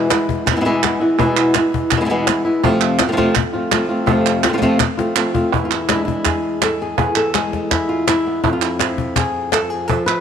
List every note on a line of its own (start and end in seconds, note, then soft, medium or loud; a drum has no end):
0.00 0.10 G#3 medium
0.10 0.45 E3 soft
0.10 0.45 G#3 soft
0.10 0.46 B3 medium
0.10 0.46 E4 medium
0.10 cajon slap medium
0.10 clap medium
0.29 cajon bass medium
0.46 muted nylon-string guitar stroke medium
0.46 cajon bass medium
0.46 clap medium
0.51 0.55 B2 soft
0.51 0.56 E3 medium
0.51 0.55 G#3 soft
0.51 0.55 B3 soft
0.51 0.56 E4 medium
0.56 0.59 B2 medium
0.56 0.60 E3 medium
0.56 0.60 G#3 medium
0.56 0.60 B3 medium
0.56 0.60 E4 medium
0.61 0.64 B2 medium
0.61 0.64 E3 medium
0.61 0.64 G#3 medium
0.61 0.65 B3 medium
0.61 0.65 E4 medium
0.65 0.82 E2 medium
0.65 0.82 B2 medium
0.65 0.82 E3 medium
0.65 0.83 G#3 medium
0.65 0.83 B3 medium
0.65 0.83 E4 medium
0.83 1.01 E3 medium
0.83 1.00 G#3 medium
0.83 1.00 B3 medium
0.83 0.99 E4 medium
0.83 cajon slap loud
0.83 clap medium
1.00 1.18 E3 soft
1.00 1.18 G#3 soft
1.00 1.18 B3 soft
1.00 1.18 E4 medium
1.18 1.54 E2 medium
1.18 1.54 B2 medium
1.18 1.54 E3 medium
1.18 1.55 G#3 medium
1.18 1.55 B3 medium
1.18 1.54 E4 medium
1.18 cajon bass medium
1.18 clap soft
1.37 clap medium
1.54 1.91 E3 soft
1.54 1.91 G#3 soft
1.54 1.91 B3 soft
1.54 1.90 E4 medium
1.54 cajon slap medium
1.54 clap medium
1.74 cajon bass medium
1.91 muted nylon-string guitar stroke medium
1.91 cajon bass loud
1.91 clap medium
1.96 2.00 B2 soft
1.96 1.99 E3 soft
1.96 2.00 G#3 soft
1.96 2.00 B3 soft
1.96 2.00 E4 medium
2.01 2.04 B2 medium
2.01 2.04 E3 medium
2.01 2.05 G#3 medium
2.01 2.05 B3 medium
2.01 2.05 E4 medium
2.05 2.08 B2 medium
2.05 2.09 E3 medium
2.05 2.09 G#3 medium
2.05 2.10 B3 medium
2.05 2.10 E4 medium
2.10 2.27 E2 medium
2.10 2.27 B2 medium
2.10 2.26 E3 medium
2.10 2.27 G#3 medium
2.10 2.27 B3 medium
2.10 2.27 E4 medium
2.27 2.45 E3 medium
2.27 2.45 G#3 medium
2.27 2.45 B3 medium
2.27 2.43 E4 medium
2.27 cajon slap loud
2.27 clap medium
2.45 2.63 E3 soft
2.45 2.63 G#3 medium
2.45 2.63 B3 soft
2.45 2.62 E4 medium
2.63 2.99 F2 medium
2.63 2.99 C3 medium
2.63 2.99 F3 medium
2.63 2.99 A3 medium
2.63 3.00 C4 medium
2.63 2.98 F4 medium
2.63 cajon bass medium
2.63 clap soft
2.81 clap medium
2.99 3.07 F3 soft
2.99 3.07 A3 soft
2.99 3.08 C4 medium
2.99 3.08 F4 medium
2.99 cajon slap loud
2.99 clap medium
3.07 3.11 C3 medium
3.07 3.11 F3 medium
3.07 3.12 A3 medium
3.07 3.12 C4 medium
3.07 3.12 F4 medium
3.12 3.16 C3 medium
3.12 3.16 F3 medium
3.12 3.16 A3 medium
3.12 3.16 C4 medium
3.12 3.17 F4 medium
3.17 3.35 F2 medium
3.17 3.35 C3 medium
3.17 3.35 F3 medium
3.17 3.35 A3 medium
3.17 3.35 C4 medium
3.17 3.35 F4 loud
3.17 cajon bass medium
3.35 muted nylon-string guitar stroke medium
3.35 cajon bass medium
3.35 clap medium
3.53 3.70 F3 soft
3.53 3.71 A3 soft
3.53 3.71 C4 medium
3.53 3.71 F4 medium
3.71 3.89 F3 medium
3.71 3.89 A3 medium
3.71 3.89 C4 medium
3.71 3.88 F4 medium
3.71 cajon slap loud
3.71 clap medium
3.89 4.06 F3 soft
3.89 4.06 A3 medium
3.89 4.07 C4 soft
3.89 4.07 F4 medium
4.06 4.43 F2 medium
4.06 4.43 C3 medium
4.06 4.43 F3 medium
4.06 4.43 A3 medium
4.06 4.43 C4 medium
4.06 4.42 F4 medium
4.06 cajon bass medium
4.26 clap medium
4.43 4.48 F3 soft
4.43 4.48 A3 medium
4.43 4.48 C4 medium
4.43 4.49 F4 medium
4.43 cajon slap loud
4.43 clap medium
4.48 4.52 C3 soft
4.48 4.53 A3 medium
4.48 4.53 C4 medium
4.48 4.53 F4 medium
4.53 4.57 C3 medium
4.53 4.57 F3 medium
4.53 4.57 A3 medium
4.53 4.57 C4 medium
4.53 4.57 F4 medium
4.58 4.61 C3 medium
4.58 4.61 F3 medium
4.58 4.61 A3 medium
4.58 4.62 C4 medium
4.58 4.62 F4 medium
4.62 4.78 F2 medium
4.62 4.79 C3 medium
4.62 4.79 F3 medium
4.62 4.79 A3 medium
4.62 4.80 C4 medium
4.62 4.80 F4 loud
4.62 cajon bass medium
4.80 muted nylon-string guitar stroke medium
4.80 cajon bass loud
4.80 clap medium
4.97 5.15 F3 soft
4.97 5.16 A3 soft
4.97 5.16 C4 soft
4.97 5.15 F4 soft
4.97 cajon slap medium
5.16 5.34 F3 medium
5.16 5.34 A3 medium
5.16 5.34 C4 medium
5.16 5.33 F4 medium
5.16 clap medium
5.34 5.53 F3 soft
5.34 5.53 A3 soft
5.34 5.52 C4 soft
5.34 5.52 F4 medium
5.34 cajon bass medium
5.53 6.97 E2 medium
5.53 5.71 E4 medium
5.53 cajon bass medium
5.53 clap soft
5.65 5.73 F4 medium
5.71 5.90 E4 medium
5.71 clap medium
5.89 6.96 G#3 medium
5.89 6.04 E4 medium
5.89 cajon slap medium
5.89 clap medium
5.96 6.39 D4 medium
6.05 6.63 E4 medium
6.05 cajon bass medium
6.25 6.80 G#4 medium
6.25 cajon bass medium
6.25 cajon slap soft
6.25 clap medium
6.62 6.81 A4 medium
6.62 cajon slap medium
6.62 clap medium
6.82 6.98 G#4 medium
6.98 8.44 E2 medium
6.98 7.33 G#4 medium
6.98 cajon bass medium
6.98 clap soft
7.16 7.35 A4 medium
7.16 clap medium
7.34 7.53 G#3 medium
7.34 7.88 G#4 medium
7.34 cajon slap medium
7.34 clap medium
7.53 8.42 G#3 soft
7.53 cajon bass medium
7.53 cajon slap soft
7.71 8.07 E4 medium
7.71 cajon bass loud
7.71 cajon slap soft
7.71 clap medium
7.89 8.07 F4 medium
8.08 8.42 E4 medium
8.08 cajon slap loud
8.08 clap medium
8.27 8.44 B3 soft
8.44 9.88 F2 medium
8.44 8.52 E4 medium
8.44 cajon bass medium
8.44 clap soft
8.53 8.61 F4 medium
8.61 8.79 E4 medium
8.61 clap medium
8.79 9.88 F3 medium
8.79 9.17 E4 medium
8.79 cajon slap medium
8.79 clap medium
8.98 cajon bass medium
9.16 9.53 G#4 medium
9.16 cajon bass loud
9.16 clap medium
9.52 9.70 A4 medium
9.52 cajon slap medium
9.52 clap medium
9.70 9.88 G#4 medium
9.88 10.20 F3 medium
9.88 10.06 A4 medium
9.88 cajon bass medium
9.88 clap soft
10.06 10.20 B4 medium
10.06 clap medium